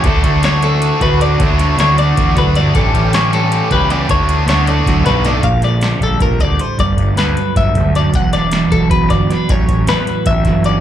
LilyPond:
<<
  \new Staff \with { instrumentName = "Clean electric guitar" } { \time 7/8 \key d \major \tempo 4 = 156 a'4 cis''8 a'4 b'8 d''8 | cis''4 cis''8 d''4 b'8 d''8 | a'4 cis''8 a'4 b'8 d''8 | cis''4 cis''8 d''4 b'8 d''8 |
f''8 d''4 a'8 bes'8 d''8 c''8 | d''4 b'4 e''4 d''8 | fis''8 d''4 a'8 b'8 d''8 b'8 | cis''4 b'4 e''4 d''8 | }
  \new Staff \with { instrumentName = "Overdriven electric guitar" } { \time 7/8 \key d \major <d a d' fis'>8 <a d' fis'>8 <d a d' fis'>8 <a d' fis'>4 <a d' fis'>8 <d a d' fis'>8 | <d a d' fis'>8 <a d' fis'>8 <d a d' fis'>8 <a d' fis'>4 <a d' fis'>8 <d a d' fis'>8 | <a, e g cis' g'>8 <g cis' g'>8 <a, e g cis' g'>8 <g cis' g'>4 <g cis' g'>8 <e g cis' g'>8 | <d a d' fis'>8 <a d' fis'>8 <d a d' fis'>8 <a d' fis'>4 <a d' fis'>8 <d a d' fis'>8 |
r2. r8 | r2. r8 | r2. r8 | r2. r8 | }
  \new Staff \with { instrumentName = "Clean electric guitar" } { \clef bass \time 7/8 \key d \major << { e'4 d'16 e'4~ e'16 fis'4 | e'4 e'2~ e'8 | <d a d' g'>2~ <d a d' g'>8 g'4 | e'8 b8 e'8 a16 b4.~ b16 |
r8 a4 g2 | r8 a4 fis2~ | fis8 d'4 fis4 fis8 d'8 | r8 cis'4 fis4 fis8 cis'8 | } \\ { d,4. d4 a,4 | d,4. d8 e,8 fis,8 g,8 | a,4. r4 e,4 | d,4. d8 fis,8 g,8 a,8 |
bes,4 d4 c8 bes,8 a,8 | g,4 d4 a,8 g,8 fis,8 | e,4 e4 b,4. | a,4 e4 e,4. | } >> }
  \new Staff \with { instrumentName = "Picked electric bass" } { \clef bass \time 7/8 \key d \major d,8 d,2 d,4 | d,4 d,4 d,8 d,4 | a,,8 a,,2 cis,4 | d,4 d,4 d,8 b,,4 |
bes,,4. bes,,8 bes,,8 d,8 r8 | g,,8 g,,8 d,8 r8 g,,8 d,4 | e,,4. e,,8 e,,8 g,,8 r8 | a,,8 a,,8 e,8 r8 a,,8 g,,4 | }
  \new DrumStaff \with { instrumentName = "Drums" } \drummode { \time 7/8 <hh bd>8 <hh bd>8 <hh sn>8 hh8 hh8 <hh bd>8 hh8 | <hh bd>8 <hh sn>8 <hh sn>8 hh8 <hh bd>8 <hh bd>8 <hh sn>8 | <hh bd>8 <hh bd>8 <hh sn>8 <hh sn>8 hh8 <hh bd>8 <hh sn>8 | <hh bd>8 hh8 <hh sn>8 hh8 <hh bd sn>8 <hh sn>8 <hh sn>8 |
<hh bd>8 <hh sn>8 <hh sn>8 <hh bd>8 <hh bd>8 <hh bd>8 hh8 | <hh bd>8 <hh bd>8 <hh sn>8 hh8 <hh bd>8 <hh bd>8 <hh sn>8 | <hh bd>8 <hh sn>8 <hh sn>8 <hh bd>8 <hh bd>8 <hh bd sn>8 <hh sn>8 | <hh bd>8 <hh bd>8 <hh sn>8 hh8 <hh bd>8 <hh bd sn>8 hh8 | }
>>